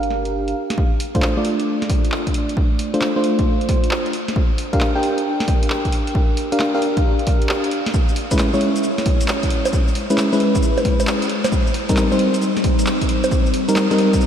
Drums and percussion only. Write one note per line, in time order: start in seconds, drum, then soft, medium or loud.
0.03 closed hi-hat soft
0.10 snare soft
0.25 closed hi-hat medium
0.48 closed hi-hat soft
0.70 snare medium
0.70 closed hi-hat medium
0.78 kick loud
1.00 open hi-hat loud
1.15 kick loud
1.15 closed hi-hat medium
1.22 clap loud
1.22 snare soft
1.45 open hi-hat loud
1.60 closed hi-hat medium
1.82 snare medium
1.82 closed hi-hat soft
1.90 kick loud
1.90 open hi-hat loud
2.05 closed hi-hat medium
2.12 clap loud
2.27 kick medium
2.27 closed hi-hat soft
2.34 open hi-hat loud
2.49 closed hi-hat medium
2.57 kick loud
2.79 open hi-hat loud
2.94 closed hi-hat medium
3.01 clap loud
3.01 snare medium
3.24 open hi-hat loud
3.39 kick loud
3.39 closed hi-hat medium
3.61 closed hi-hat soft
3.69 kick loud
3.69 snare soft
3.69 open hi-hat loud
3.84 closed hi-hat medium
3.91 clap loud
4.06 closed hi-hat soft
4.13 open hi-hat loud
4.28 snare medium
4.28 closed hi-hat medium
4.36 kick loud
4.58 open hi-hat loud
4.73 kick loud
4.73 closed hi-hat medium
4.81 clap loud
4.81 snare soft
5.03 open hi-hat medium
5.18 closed hi-hat medium
5.40 snare medium
5.40 closed hi-hat soft
5.48 kick loud
5.48 open hi-hat loud
5.63 closed hi-hat medium
5.70 clap loud
5.85 kick medium
5.85 closed hi-hat soft
5.92 open hi-hat loud
6.07 closed hi-hat medium
6.15 kick loud
6.37 open hi-hat medium
6.52 closed hi-hat medium
6.60 clap loud
6.60 snare soft
6.82 open hi-hat medium
6.97 kick loud
6.97 closed hi-hat medium
7.19 closed hi-hat soft
7.27 kick loud
7.27 snare soft
7.27 open hi-hat medium
7.42 closed hi-hat medium
7.49 clap loud
7.64 closed hi-hat soft
7.71 open hi-hat loud
7.86 snare medium
7.86 closed hi-hat medium
7.94 kick loud
7.94 shaker medium
8.09 shaker soft
8.16 open hi-hat loud
8.31 kick loud
8.31 closed hi-hat medium
8.31 shaker medium
8.39 clap loud
8.39 snare soft
8.39 shaker medium
8.53 shaker soft
8.61 open hi-hat loud
8.76 closed hi-hat medium
8.76 shaker medium
8.83 shaker medium
8.98 snare medium
8.98 closed hi-hat soft
8.98 shaker soft
9.06 kick loud
9.06 open hi-hat loud
9.21 closed hi-hat medium
9.21 shaker medium
9.28 clap loud
9.28 shaker medium
9.43 kick medium
9.43 closed hi-hat medium
9.43 shaker soft
9.50 open hi-hat loud
9.65 closed hi-hat medium
9.65 high bongo medium
9.65 shaker medium
9.73 kick loud
9.73 shaker medium
9.88 shaker soft
9.95 open hi-hat loud
10.10 closed hi-hat medium
10.10 shaker medium
10.18 clap loud
10.18 snare soft
10.18 shaker medium
10.33 shaker soft
10.40 open hi-hat loud
10.55 kick loud
10.55 closed hi-hat medium
10.55 shaker medium
10.63 shaker medium
10.78 closed hi-hat soft
10.78 high bongo medium
10.78 shaker soft
10.85 kick loud
10.85 snare soft
10.85 open hi-hat loud
11.00 closed hi-hat medium
11.00 high bongo medium
11.00 shaker medium
11.07 clap loud
11.07 shaker medium
11.22 closed hi-hat medium
11.22 shaker soft
11.29 open hi-hat loud
11.44 snare medium
11.44 closed hi-hat medium
11.44 high bongo medium
11.44 shaker medium
11.52 kick loud
11.52 shaker medium
11.67 shaker soft
11.74 open hi-hat loud
11.89 kick loud
11.89 closed hi-hat medium
11.89 shaker medium
11.97 clap loud
11.97 snare soft
11.97 shaker medium
12.12 shaker soft
12.19 open hi-hat loud
12.34 closed hi-hat medium
12.34 shaker medium
12.42 shaker medium
12.57 snare medium
12.57 closed hi-hat soft
12.57 shaker soft
12.64 kick loud
12.64 open hi-hat loud
12.79 closed hi-hat medium
12.79 shaker medium
12.87 clap loud
12.87 shaker medium
13.01 kick medium
13.01 closed hi-hat medium
13.01 shaker soft
13.09 open hi-hat loud
13.24 closed hi-hat medium
13.24 high bongo medium
13.24 shaker medium
13.31 kick loud
13.31 shaker soft
13.46 shaker soft
13.54 open hi-hat loud
13.69 closed hi-hat medium
13.69 shaker medium
13.76 clap loud
13.76 snare medium
13.76 shaker medium
13.91 closed hi-hat soft
13.91 shaker soft
13.98 open hi-hat loud
14.13 kick loud
14.13 closed hi-hat medium
14.13 shaker medium
14.21 shaker soft